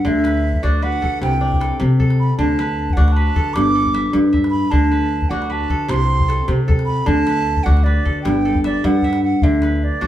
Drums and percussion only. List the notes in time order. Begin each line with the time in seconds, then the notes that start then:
0.05 calabash thump
0.25 calabash click
0.35 calabash click
0.44 calabash click
0.54 calabash thump
0.93 calabash click
1.03 calabash thump, calabash click
1.23 calabash click
1.53 calabash thump
1.61 calabash click
2.00 calabash thump
2.10 calabash click
2.40 calabash thump
2.59 calabash click
2.69 calabash click
2.78 calabash click
2.90 calabash thump
3.08 calabash click
3.27 calabash click
3.36 calabash thump, calabash click
3.56 calabash click
3.85 calabash thump
3.95 calabash click
4.34 calabash thump
4.44 calabash click
4.73 calabash thump
5.03 calabash click
5.13 calabash click
5.22 calabash thump
5.42 calabash click
5.60 calabash click
5.70 calabash thump, calabash click
5.89 calabash click
6.20 calabash thump
6.30 calabash click
6.69 calabash thump
6.79 calabash click
7.08 calabash thump, calabash click
7.27 calabash click
7.48 calabash click
7.57 calabash thump
7.67 calabash click
7.77 calabash click
8.06 calabash thump, calabash click
8.26 calabash click
8.55 calabash thump, calabash click
8.64 calabash click
8.74 calabash click
9.02 calabash thump
9.13 calabash click
9.42 calabash thump
9.62 calabash click
9.72 calabash click
9.82 calabash click
9.92 calabash thump